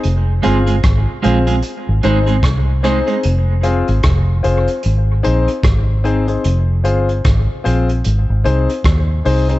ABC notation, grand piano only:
X:1
M:4/4
L:1/16
Q:"Swing 16ths" 1/4=75
K:Fm
V:1 name="Grand piano"
z2 [CFAc] z3 [CFAc] z3 [CEAc] z3 [CEAc] [CEAc] | z2 [CFAc] z3 [CFAc] z3 [CEAc] z3 [CEAc] [CEAc] | z2 [CFAc] z3 [CFAc] z3 [CEAc] z3 [CEAc] [CEAc] |]